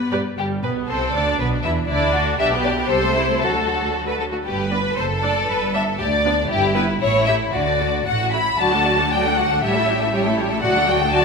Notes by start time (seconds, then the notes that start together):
Already playing: B3
0.12 G2 G4 B4 D5
0.38 G1 G2 G3 G4
0.63 B1 B2 B3 B4
0.88 C2 C3 C4 A4 C5
1.14 D2 D3 D4 D5
1.39 B1 B2 B3 D4 B4
1.64 E2 E3 E4 E5
1.89 D2 D3 D4 E4 D5
2.13 F#4
2.38 B1 B2 D4 G4 E5
2.52 B3 B4
2.64 D4 G4 D5
2.78 B3 B4
2.89 C2 C3 G3 G4 A4 C5
3.02 A3 A4
3.14 G3 E4 G4
3.28 A3 A4
3.41 D2 D3 F#3 F#4 A4
3.54 A3 A4
3.67 F#3 F#4
3.80 A3 A4
3.93 F#3 F#4
4.06 A3 A4 B4
4.19 F#3 F#4 A4
4.32 A3 F#4 A4
4.45 G1 G2 G4 B4
4.71 B3 D4 B4
4.97 F#1 F#2 A4 C5
5.22 A3 D4 D5
5.47 G1 G2 B4
5.74 B3 D4 E5
5.99 D2 G4 D5
6.24 B3 D4
6.49 G1 G2 E4 G4
6.75 B3 E4 B4
7.00 A1 A2 E4 C#5
7.26 A3 G4 E5
7.53 D2 D3 F#4 D5
7.80 A3 F#4
8.06 A1 A2 F#4 F#5
8.33 A3 E4 F#4 B5
8.59 D2 D3 F#3 F#4 D5 A5
8.72 A3 D4 A4 F#5
8.85 F#3 F#4 D5
8.98 A3 D4 A4 F#5
9.11 F#3 F#4 D5 G5
9.25 A3 D4 A4 F#5
9.37 F#3 F#4 D5 F#5
9.50 A3 D4 A4 F#5
9.63 A1 A2 G3 G4 C#5 E5
9.76 A3 E4 A4 E5
9.88 G3 G4 C#5
10.01 A3 E4 A4 E5
10.13 G3 G4 C#5
10.25 A3 E4 A4 E5
10.38 G3 G4 C#5
10.50 A3 E4 A4 E5
10.62 D2 F#3 F#4 D5 F#5
10.75 A3 D4 A4 F#5
10.88 F#3 F#4 D5 G5
10.99 A3 D4 A4 F#5
11.11 F#3 F#4 D5 A5